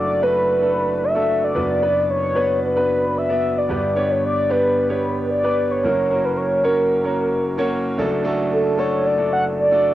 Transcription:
0.00 1.52 F#1 medium
0.00 1.52 F#2 medium
0.00 0.21 A3 medium
0.00 0.22 D4 medium
0.00 0.22 F#4 medium
0.00 0.62 A4 medium
0.00 0.24 D5 loud
0.21 0.51 A3 medium
0.21 0.51 D4 medium
0.21 0.51 F#4 medium
0.21 0.51 B4 medium
0.21 1.05 B4 medium
0.61 1.00 A3 medium
0.61 1.00 D4 medium
0.61 1.00 F#4 medium
0.61 1.01 A4 medium
1.04 1.45 E5 medium
1.15 1.44 A3 medium
1.15 1.44 D4 medium
1.15 1.45 F#4 medium
1.15 1.45 A4 medium
1.44 2.10 D5 medium
1.55 3.65 F#1 medium
1.55 3.65 F#2 medium
1.55 1.74 B3 medium
1.55 1.75 D4 medium
1.55 1.75 F#4 medium
1.55 1.75 B4 medium
1.82 2.21 B3 medium
1.82 2.21 D4 medium
1.82 2.21 F#4 medium
1.82 2.21 B4 medium
2.10 2.60 C#5 loud
2.35 2.64 B3 medium
2.35 2.65 D4 medium
2.35 2.65 F#4 medium
2.35 2.65 B4 medium
2.65 3.19 B4 medium
2.76 3.15 B3 medium
2.76 3.15 D4 medium
2.76 3.15 F#4 medium
2.76 3.15 B4 medium
3.18 3.59 E5 loud
3.29 3.58 B3 medium
3.29 3.58 D4 medium
3.29 3.58 F#4 medium
3.29 3.59 D5 medium
3.58 4.13 D5 medium
3.69 5.80 G1 medium
3.69 5.80 G2 medium
3.69 3.89 B3 medium
3.69 3.89 D4 medium
3.69 3.89 G4 medium
3.69 3.89 B4 medium
3.95 4.35 B3 medium
3.95 4.35 D4 medium
3.95 4.35 G4 medium
3.95 4.35 C#5 medium
4.11 4.24 C#5 medium
4.25 4.52 D5 medium
4.49 4.79 B3 medium
4.49 4.79 D4 medium
4.49 4.79 G4 medium
4.49 5.30 B4 medium
4.49 4.79 D5 medium
4.89 5.28 B3 medium
4.89 5.28 D4 medium
4.89 5.29 G4 medium
4.89 5.29 C#5 medium
5.31 5.73 D5 medium
5.43 5.72 B3 medium
5.43 5.73 D4 medium
5.43 5.73 G4 medium
5.43 5.73 B4 medium
5.71 6.26 C#5 medium
5.84 7.94 F#1 medium
5.84 7.94 F#2 medium
5.84 6.03 A#3 medium
5.84 6.03 C#4 medium
5.84 6.03 F#4 medium
5.84 6.04 A#4 medium
6.10 6.49 A#3 medium
6.10 6.49 C#4 medium
6.10 6.49 F#4 medium
6.10 6.49 A#4 medium
6.25 6.38 B4 medium
6.37 6.66 C#5 medium
6.63 6.93 A#3 medium
6.63 6.93 C#4 medium
6.63 6.93 F#4 medium
6.63 7.71 A#4 medium
6.63 6.93 C#5 medium
7.04 7.43 A#3 medium
7.04 7.43 C#4 medium
7.04 7.43 F#4 medium
7.04 7.43 C#5 medium
7.58 7.87 A#3 medium
7.58 7.87 C#4 medium
7.58 7.87 F#4 medium
7.58 7.87 C#5 medium
7.98 9.94 F#1 medium
7.98 9.94 F#2 medium
7.98 8.17 A3 medium
7.98 8.17 D4 medium
7.98 8.18 F#4 medium
7.98 8.18 A4 medium
8.23 8.63 A3 medium
8.23 8.63 D4 medium
8.23 8.63 F#4 medium
8.23 8.63 A4 medium
8.53 8.81 A4 medium
8.77 9.07 A3 medium
8.77 9.07 D4 medium
8.77 9.07 F#4 medium
8.77 9.07 A4 medium
8.77 9.08 C#5 medium
9.06 9.33 D5 loud
9.17 9.57 A3 medium
9.17 9.57 D4 medium
9.17 9.57 F#4 medium
9.17 9.57 A4 medium
9.33 9.45 F#5 loud
9.59 9.94 D5 loud
9.71 9.94 A3 medium
9.71 9.94 D4 medium
9.71 9.94 F#4 medium
9.71 9.94 A4 medium

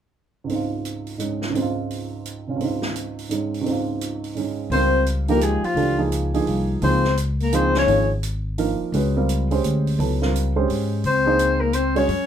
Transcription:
0.44 1.49 C#2 soft
0.44 1.17 G#2 soft
0.49 1.54 C4 soft
0.49 1.19 D#4 soft
0.49 open hi-hat soft
0.56 1.58 F4 soft
0.85 closed hi-hat soft
1.07 open hi-hat soft
1.18 1.52 G#2 soft
1.18 1.55 G#3 soft
1.18 1.55 C#4 soft
1.18 1.56 D#4 soft
1.18 closed hi-hat soft
1.42 snare soft
1.50 2.54 C#2 soft
1.50 2.57 G#2 soft
1.55 2.60 C4 soft
1.55 2.63 D#4 soft
1.55 open hi-hat soft
1.62 2.49 F4 soft
1.91 open hi-hat soft
2.25 closed hi-hat soft
2.47 2.60 C3 soft
2.47 2.61 C#4 soft
2.47 2.62 F4 soft
2.56 3.59 C#2 soft
2.56 3.28 G#2 soft
2.61 3.65 C4 soft
2.61 3.30 D#4 soft
2.61 open hi-hat soft
2.67 3.69 F4 soft
2.82 snare soft
2.96 closed hi-hat soft
3.19 open hi-hat soft
3.29 3.62 G#2 soft
3.29 3.66 G#3 soft
3.29 3.66 C#4 soft
3.29 3.66 D#4 soft
3.29 closed hi-hat soft
3.54 open hi-hat soft
3.61 4.69 C#2 soft
3.61 4.33 G#2 soft
3.66 4.70 C4 soft
3.66 4.37 D#4 soft
3.66 open hi-hat soft
3.72 4.71 F4 soft
4.01 closed hi-hat soft
4.24 open hi-hat soft
4.35 4.71 G#2 soft
4.35 4.71 G#3 soft
4.35 4.72 C#4 soft
4.35 4.73 D#4 soft
4.35 open hi-hat soft
4.70 5.59 C#2 medium
4.70 5.24 G3 soft
4.70 5.25 C4 soft
4.70 5.04 C4 medium
4.70 5.25 F4 soft
4.70 5.25 A#4 medium
4.70 5.05 C5 medium
4.70 open hi-hat soft
5.06 closed hi-hat soft
5.28 5.74 F3 medium
5.28 5.74 A#3 soft
5.28 5.43 A#3 medium
5.28 5.74 D#4 medium
5.28 5.75 G4 medium
5.28 5.44 A#4 medium
5.28 open hi-hat soft
5.41 5.68 G#3 medium
5.41 5.67 G#4 medium
5.41 closed hi-hat soft
5.63 6.00 F3 medium
5.63 6.00 F4 medium
5.63 muted upright bass stroke soft
5.63 open hi-hat soft
5.75 6.42 C#2 medium
5.75 5.97 E3 soft
5.75 5.97 A3 soft
5.75 5.97 D4 soft
5.75 5.97 G4 medium
5.75 open hi-hat soft
5.98 6.30 F3 medium
5.98 6.30 A#3 soft
5.98 6.30 D#4 soft
5.98 6.30 G#4 medium
6.12 closed hi-hat soft
6.34 6.80 F3 medium
6.34 6.79 A#3 medium
6.34 6.80 D#4 medium
6.34 6.80 G#4 medium
6.34 open hi-hat soft
6.46 6.79 C2 medium
6.46 open hi-hat soft
6.82 7.83 C#2 medium
6.82 7.02 F3 medium
6.82 7.02 A#3 soft
6.82 7.15 C4 medium
6.82 7.03 D#4 soft
6.82 7.03 G#4 medium
6.82 7.16 C5 medium
6.82 open hi-hat soft
7.04 snare soft
7.17 closed hi-hat soft
7.40 7.56 A#3 medium
7.40 7.56 A#4 medium
7.40 open hi-hat soft
7.52 7.86 F3 medium
7.52 7.86 A#3 soft
7.52 7.76 C4 medium
7.52 7.87 D#4 medium
7.52 7.87 G#4 medium
7.52 7.76 C5 medium
7.52 closed hi-hat soft
7.75 8.08 C#4 medium
7.75 snare soft
7.75 open hi-hat soft
7.79 8.10 C#5 medium
7.87 8.76 G#1 medium
7.87 8.08 F3 soft
7.87 8.08 A#3 soft
7.87 8.08 D#4 soft
7.87 8.08 G#4 medium
7.87 open hi-hat soft
8.23 closed hi-hat soft
8.58 8.93 F3 medium
8.58 8.93 A#3 soft
8.58 8.93 D#4 soft
8.58 8.93 A#4 medium
8.58 open hi-hat soft
8.81 muted upright bass stroke soft
8.92 9.59 C#2 medium
8.92 9.14 G#3 medium
8.92 9.14 C#4 soft
8.92 9.14 F#4 soft
8.92 9.14 B4 medium
8.92 open hi-hat soft
9.17 9.47 G3 medium
9.17 9.47 C4 medium
9.17 9.47 F4 medium
9.17 9.47 A#4 medium
9.29 closed hi-hat soft
9.51 9.96 G#3 medium
9.51 9.96 C#4 medium
9.51 9.96 G4 medium
9.51 9.97 C5 medium
9.51 open hi-hat soft
9.63 9.96 D2 medium
9.63 closed hi-hat soft
9.87 open hi-hat soft
9.98 10.64 C#2 medium
9.98 10.18 F#3 soft
9.98 10.19 B3 soft
9.98 10.19 E4 soft
9.98 10.19 A4 medium
9.98 open hi-hat soft
10.22 10.52 G3 medium
10.22 10.52 C4 soft
10.22 10.52 F4 soft
10.22 10.52 A#4 medium
10.22 snare soft
10.36 closed hi-hat soft
10.56 11.01 G#3 medium
10.56 11.01 C#4 medium
10.56 11.01 G4 medium
10.56 11.01 C5 medium
10.68 11.01 G#2 medium
10.68 open hi-hat soft
11.04 12.05 C#2 medium
11.04 11.62 C5 medium
11.04 open hi-hat soft
11.09 11.64 C4 medium
11.26 11.71 A#3 medium
11.26 11.71 D#4 medium
11.26 11.71 G#4 medium
11.26 11.72 C5 medium
11.39 closed hi-hat soft
11.61 11.77 A#3 medium
11.61 11.76 A#4 medium
11.73 11.98 C4 medium
11.73 11.99 C5 medium
11.73 closed hi-hat soft
11.95 12.07 G#3 medium
11.95 12.26 C#4 medium
11.95 12.07 C#4 medium
11.95 12.07 F#4 medium
11.95 12.08 C#5 medium
11.95 12.26 C#5 medium
11.95 open hi-hat soft
12.08 12.26 F#2 medium
12.08 open hi-hat soft

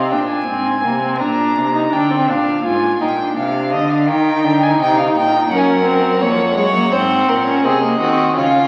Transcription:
0.00 0.14 C3 medium
0.00 0.14 C4 medium
0.00 0.10 F5 medium
0.11 0.48 A#2 medium
0.11 0.48 D4 medium
0.11 0.29 G5 medium
0.30 1.19 G#5 medium
0.48 0.86 G#2 medium
0.48 0.84 C4 medium
0.84 1.22 C3 medium
0.84 1.02 A#3 medium
1.02 1.22 C4 medium
1.20 1.59 A#2 medium
1.20 1.74 D4 medium
1.20 1.94 A#5 medium
1.57 1.92 C3 medium
1.75 1.92 D#4 medium
1.93 2.31 D3 medium
1.93 2.12 D4 medium
1.93 2.31 G5 medium
2.11 2.31 C4 medium
2.29 2.64 A#2 medium
2.29 2.65 D4 medium
2.29 2.65 F5 medium
2.65 3.00 G#2 medium
2.65 3.00 F4 medium
2.65 3.00 G#5 medium
3.01 3.36 A#2 medium
3.01 3.08 D#4 medium
3.01 3.36 G5 medium
3.19 4.10 D4 medium
3.37 3.74 C3 medium
3.37 3.72 F5 medium
3.72 4.10 D3 medium
3.72 3.92 D#5 medium
3.90 4.08 F5 medium
4.08 4.45 D#3 medium
4.08 5.50 D#4 medium
4.08 4.64 G5 medium
4.44 4.79 D3 medium
4.63 4.79 G#5 medium
4.79 5.14 C3 medium
4.79 4.97 G5 loud
4.98 5.05 F5 medium
5.15 5.50 A#2 medium
5.15 5.50 G5 loud
5.50 6.19 F#2 medium
5.50 5.85 C#4 loud
5.50 6.22 A#4 medium
5.50 5.59 F#5 medium
5.58 5.67 G#5 medium
5.66 7.67 F#5 medium
5.85 6.22 C4 medium
6.21 6.58 F2 medium
6.21 6.56 A#3 medium
6.21 6.56 C#5 medium
6.56 6.94 F#2 medium
6.56 6.74 G#3 medium
6.56 6.94 C#5 medium
6.75 6.92 A#3 medium
6.92 7.28 G#2 medium
6.92 7.46 C4 loud
6.92 7.30 C5 medium
7.29 7.66 A#2 medium
7.29 7.64 A#4 medium
7.47 7.66 C#4 medium
7.64 8.00 C3 medium
7.64 7.82 C4 medium
7.64 8.00 G#4 medium
7.64 8.37 D#5 medium
7.83 8.01 A#3 medium
8.00 8.38 D#3 medium
8.00 8.37 C4 medium
8.00 8.36 F#4 medium
8.36 8.68 C#3 medium
8.36 8.68 C#4 medium
8.36 8.68 F4 medium
8.36 8.68 F5 medium

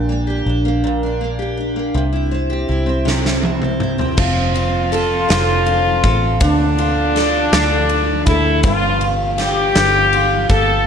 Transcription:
0.00 0.42 A#1 medium
0.00 0.83 A#2 medium
0.00 0.45 D4 soft
0.00 0.27 G4 medium
0.09 0.64 A#3 soft
0.27 1.38 G4 soft
0.46 1.91 A#1 medium
0.46 1.02 D4 soft
0.65 1.20 A#3 soft
0.84 2.03 A#2 medium
1.03 1.56 D4 soft
1.21 1.75 A#3 soft
1.39 2.49 G4 medium
1.57 2.02 D4 soft
1.76 2.02 A#3 soft
1.94 2.65 C2 medium
1.94 3.04 C3 medium
2.13 2.67 E4 soft
2.31 2.86 C4 soft
2.50 3.60 G4 medium
2.68 4.14 C2 medium
2.68 3.23 E4 soft
2.86 3.42 C4 soft
3.05 4.25 C3 medium
3.05 snare soft
3.24 3.79 E4 soft
3.24 snare soft
3.43 3.98 C4 soft
3.43 high tom medium
3.62 4.25 G4 soft
3.62 mid tom medium
3.80 4.25 E4 soft
3.80 mid tom medium
3.98 5.28 C4 soft
3.98 floor tom medium
4.17 5.25 F1 medium
4.17 7.67 F3 medium
4.17 6.37 F4 medium
4.17 kick loud
4.17 crash loud
4.54 5.66 F4 medium
4.54 ride soft
4.92 6.03 A4 medium
4.92 ride soft
5.29 6.00 F1 medium
5.29 6.48 C4 medium
5.29 snare loud
5.29 ride medium
5.66 6.78 F4 medium
5.66 ride soft
6.04 6.39 A1 medium
6.04 7.16 A4 medium
6.04 kick medium
6.04 ride soft
6.40 7.48 D2 medium
6.40 9.91 D3 medium
6.40 8.27 D4 medium
6.40 kick loud
6.40 ride medium
6.78 8.67 F4 medium
6.78 ride soft
7.16 8.26 A4 medium
7.16 snare soft
7.16 ride soft
7.52 8.23 D2 medium
7.52 9.75 D4 medium
7.52 snare loud
7.52 ride medium
7.89 ride soft
8.26 8.62 D2 medium
8.26 8.61 E4 loud
8.26 8.71 A4 medium
8.26 kick medium
8.26 ride soft
8.63 9.71 G1 loud
8.63 10.87 G2 medium
8.63 9.08 F4 medium
8.63 kick loud
8.63 ride medium
9.01 10.12 F4 medium
9.01 ride soft
9.38 10.45 G4 loud
9.38 10.48 G4 medium
9.38 snare soft
9.38 ride soft
9.75 10.46 G1 medium
9.75 10.87 B3 medium
9.75 snare medium
9.75 ride medium
10.13 10.87 F4 medium
10.13 ride soft
10.50 10.84 G1 medium
10.50 10.87 G4 medium
10.50 10.84 A4 loud
10.50 kick medium
10.50 ride soft

